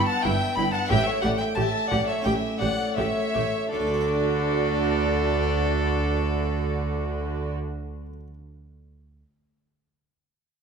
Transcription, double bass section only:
0.26 G1
0.58 G1
0.90 A1
1.23 A1
1.58 A1
1.92 A1
2.26 A1
2.62 A1
2.99 A1
3.36 A1
3.74 D2

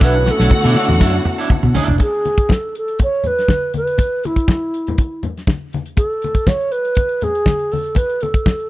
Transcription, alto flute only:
0.05 B4
0.31 A4
2.02 G#4
2.53 A4
2.78 A4
3.03 C#5
3.27 B4
3.77 B4
4.26 E4
5.97 A4
6.47 C#5
6.72 B4
7.23 G#4
7.72 A4
7.97 B4
8.22 A4

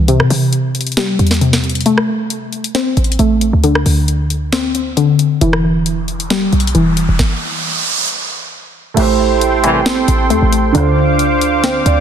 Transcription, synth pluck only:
0.08 C3
0.97 G3
1.41 C3
1.86 A3
2.75 C4
3.19 A3
3.64 D3
4.52 C4
4.97 D3
5.41 E3
6.30 G3
6.75 E3
8.97 A3
9.86 C4
10.30 A3
10.75 D3
11.64 C4

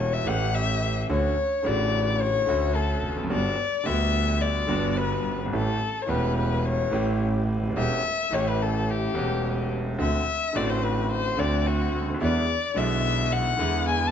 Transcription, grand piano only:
Already playing: E1 E2 E3 A3 C#4 G4
0.25 A1 A2 E3 A3 C#4 G4
1.09 D2 D3 A3 C#4 F#4
1.63 A1 A2 C#3 D3 A3 F#4
2.46 D2 D3 A3 C#4 F#4
3.09 E2
3.16 F2
3.23 F#2
3.30 G1 G2 D3 G3 B3 F#4
3.84 D2 D3 G3 B3 F#4
4.67 G1 G2 D3 G3 B3 F#4
5.31 F#1
5.39 G1
5.46 G#1
5.52 A1 A2 E3 A3 C#4 G4
6.06 E1 E2 E3 A3 C#4 G4
6.90 A1 A2 E3 A3 C#4 G4
7.56 C#1
7.62 D1
7.70 D#1
7.76 E1 E2 E3 A3 C#4 G4
8.31 A1 A2 E3 A3 C#4
8.35 G4
9.13 E1 E2 E3 A3 C#4 G4
9.98 D2 D3 A3 C4 F#4
10.53 A1 A2 D3 A3 C4
10.57 F#4
11.37 D2 D3 A3 C4 F#4
12.01 C#2
12.08 D2
12.14 D#2
12.21 E2 D3 E3 G#3 B3 E4
12.74 B1 B2 D3 G#3 B3
12.78 E4
13.57 E2 D3 E3 G#3 B3
13.61 E4

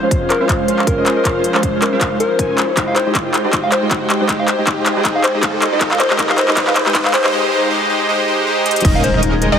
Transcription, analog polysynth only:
0.03 G#3 C#4 F4 C5 F5
0.41 G#3 C#4 F4 C5 F5
0.68 G#3 C#4 F4 C5 F5
0.98 G#3 C#4 F4 C5 D#5
1.25 G#3 C#4 F4 C5 F5
1.55 G#3 C#4 F4 C5 F5
1.93 G#3 C#4 F4 C5 F5
2.39 G#3 C#4 F4 C5 G#5
2.77 G#3 D#4 G4 C5 D#5
3.06 G#3 D#4 G4 C5 D#5
3.45 G#3 D#4 G4 C5 D#5
3.53 G#3 D#4 G4 C5 D#5
3.82 G#3 D#4 G4 C5 D#5
4.20 G#3 D#4 G4 C5 D#5
4.29 G#3 D#4 G4 C5 D#5
4.59 G#3 D#4 G4 C5 D#5
4.96 G#3 D#4 G4 C5 D#5
5.05 G#3 D#4 G4 C5 D#5
5.34 G#3 D#4 G4 C5 D#5
5.72 G#3 D#4 G4 C5 D#5
5.81 G#3 D#4 G4 C5 D#5
6.10 G#3 D#4 G4 C5 D#5
6.19 G#3 D#4 G4 C5 D#5
6.48 G#3 D#4 G4 C5 D#5
6.57 G#3 D#4 G4 C5 D#5
6.86 G#3 D#4 G4 C5 D#5
6.95 G#3 D#4 G4 C5 D#5
7.24 G#3 D#4 G4 C5 D#5
7.33 G#3 D#4 G4 C5 D#5
7.52 G#3 D#4 G4 C5 D#5
7.71 G#3 D#4 G4 C5 D#5
7.90 G#3 D#4 G4 C5 D#5
8.09 G#3 D#4 G4 C5 D#5
8.28 G#3 D#4 G4 C5 D#5
8.47 G#3 D#4 G4 C5 D#5
8.66 G#3 D#4 G4 C5 D#5
8.85 G#3 C#4 D#4 A#4 D#5
9.14 G#3 C#4 D#4 A#4 D#5
9.52 G#3 C#4 D#4 A#4 D#5

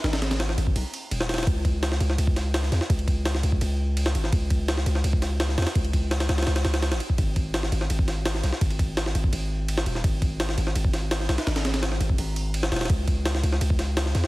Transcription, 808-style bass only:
0.04 G#1
0.58 G#1
0.76 B1
1.11 D#1
1.47 C#2
2.00 C#2
2.18 C#2
2.72 E2
2.90 C#2
3.43 C#2
3.61 C#2
4.15 G#1
4.32 C#2
4.86 C#2
5.04 C#2
5.58 E2
5.75 C#2
6.29 C#2
6.47 C#2
6.65 C#2
6.92 G#1
7.18 G#1
7.72 G#1
7.90 G#1
8.44 B1
8.61 G#1
9.15 G#1
9.33 G#1
9.86 D#1
10.04 G#1
10.58 G#1
10.75 G#1
11.29 B1
11.47 G#1
12.00 G#1
12.18 G#1
12.72 D#1
12.90 C#2
13.43 C#2
13.61 C#2
14.15 E2

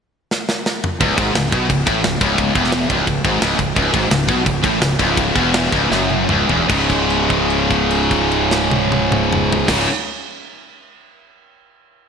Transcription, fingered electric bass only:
1.01 C#1
1.18 G#1
1.35 C#1
1.53 B1
1.70 C#1
1.87 A1
2.04 C#1
2.21 C#1
2.55 E1
2.90 C#1
3.07 C#1
3.24 G#1
3.42 C#1
3.59 C#1
3.76 C#1
3.94 G#1
4.10 C#1
4.29 B1
4.46 C#1
4.64 A1
4.81 C#1
4.99 C#1
5.36 E1
5.72 C#1
5.91 F#1
6.31 C#1
6.50 E1
6.69 C#1
9.68 C#1

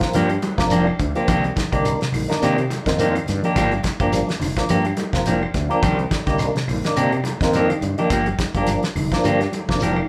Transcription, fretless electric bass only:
0.16 G2
0.58 F1
0.99 D2
1.28 C2
1.73 C2
2.14 A#1
2.42 C3
2.86 F2
3.29 G2
3.57 G1
4.00 G1
4.41 F1
4.70 G2
5.13 F1
5.55 D2
5.83 C2
6.27 C2
6.69 A#1
6.98 C3
7.41 F2
7.82 G2
8.11 G1
8.55 G1
8.95 F1
9.24 G2
9.69 F1

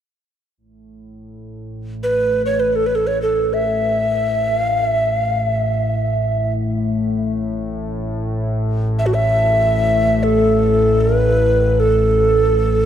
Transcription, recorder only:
2.03 B4
2.46 C#5
2.60 B4
2.73 A4 B4
2.86 B4
2.95 A4
3.07 C#5
3.22 A4
3.53 E5
4.59 F5
4.87 E5
5.19 F5
5.47 E5
8.99 E5
9.06 F#4
9.14 E5
10.23 A4
11.01 B4
11.80 A4

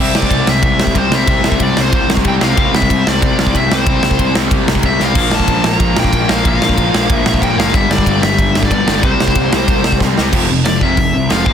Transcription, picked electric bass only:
Already playing: C2
0.15 C2
0.31 C2
0.48 C2
0.63 C2
0.80 C2
0.95 C2
1.11 C2
1.28 C2
1.44 C2
1.61 C2
1.78 C2
1.93 C2
2.09 C2
2.26 C2
2.42 C2
2.58 C2
2.75 C2
2.90 C2
3.07 C2
3.23 C2
3.39 C2
3.55 C2
3.71 C2
3.87 C2
4.03 C2
4.19 C2
4.35 C2
4.51 C2
4.68 C2
4.83 C2
5.00 C2
5.16 A#1
5.33 A#1
5.49 A#1
5.64 A#1
5.80 A#1
5.97 A#1
6.13 A#1
6.30 A#1
6.45 A#1
6.62 A#1
6.78 A#1
6.95 A#1
7.10 A#1
7.26 A#1
7.43 A#1
7.57 F#1
7.74 G1
7.89 G1
8.06 G1
8.23 G1
8.39 G1
8.55 G1
8.71 G1
8.87 G1
9.03 C2
9.20 C2
9.36 C2
9.52 C2
9.69 C2
9.84 C2
10.00 C2
10.18 C2
10.33 F1
10.50 F1
10.66 F1
10.97 F1
11.14 C2
11.30 F1
11.46 A#1

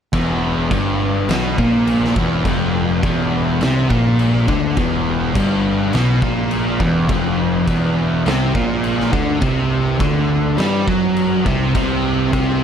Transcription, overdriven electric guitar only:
0.13 E2
0.71 G2
1.29 B2
1.58 A#2
2.18 E2
2.47 F2
3.05 E2
3.61 C3
3.90 A#2
4.48 D3
4.77 E2
5.36 G2
5.94 B2
6.23 A#2
6.81 E2
7.11 F2
7.68 E2
8.26 C3
8.55 A#2
9.13 D3
9.40 C3
10.01 D3
10.58 G3
10.88 F#3
11.47 C3
11.75 C3
12.33 C3

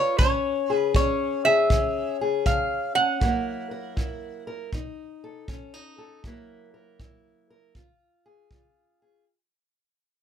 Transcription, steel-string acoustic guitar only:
Already playing: C#3 F4
0.19 C#3 C#4
0.70 G#4
0.95 C#3 C#4
1.46 G#4
1.71 C#3 C#4
2.21 G#4
2.46 C#3
2.96 C#4
3.20 F#2 F#3 A#3 E4 A#4
3.71 A#4
3.96 F#2 E4
4.47 A#4
4.74 B2 D#4
5.24 A4
5.48 B2 C#4
5.74 D#4
5.98 A4
6.24 F#2 F#3 A#3 E4 A#4
6.74 A#4
7.00 F#2 E4
7.50 A#4
7.76 C#3 F4
8.26 G#4
8.51 C#3 F4
9.02 G#4

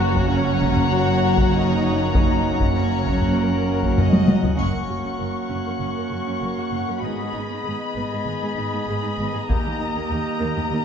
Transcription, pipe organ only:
Already playing: A#3 C#4 F#4 F#5
4.56 A#3 C#4 F#4 F#5
7.04 B3 D#4 G#4 D#5
9.49 A#3 G4

